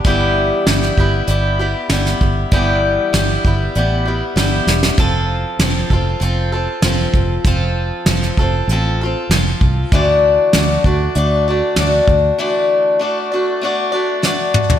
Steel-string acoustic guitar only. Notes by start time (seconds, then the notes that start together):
0.05 G2 E3 G3 B3 E4 G4
0.67 G3 B3 E4 G4
0.98 G3 B3 E4 G4
1.27 G3 B3 E4 G4
1.59 G3 B3 E4 G4
1.91 G3 B3 E4 G4
2.52 G2 E3 G3 B3 E4 G4
3.13 G3 B3 E4 G4
3.45 G3 B3 E4 G4
3.76 G3 B3 E4 G4
4.05 G3 B3 E4 G4
4.36 G3 B3 E4 G4
4.98 F3 C4 F4 A4
5.61 F3 C4 F4 A4
5.91 C4 F4 A4
6.20 F3 C4 F4 A4
6.52 C4 F4 A4
6.84 F3 C4 F4 A4
7.45 F3 C4 F4 A4
8.07 F3 C4 F4 A4
8.39 C4 F4 A4
8.70 F3 C4 F4 A4
9.01 F4 A4
9.05 C4
9.31 F3 C4 F4 A4
9.92 D3 E3 A3 D4 F#4 D5
10.54 A3 D4 F#4 D5
10.84 A3 D4 F#4 D5
11.15 A3 D4 F#4 D5
11.48 A3 D4 F#4 D5
11.77 A3 D4 F#4 D5
12.38 D3 E3 A3 D4 F#4 D5
12.99 A3 D4 F#4 D5
13.32 A3 D4 F#4 D5
13.61 A3 D4 F#4 D5
13.92 A3 D4 F#4 D5
14.22 A3 D4 F#4 D5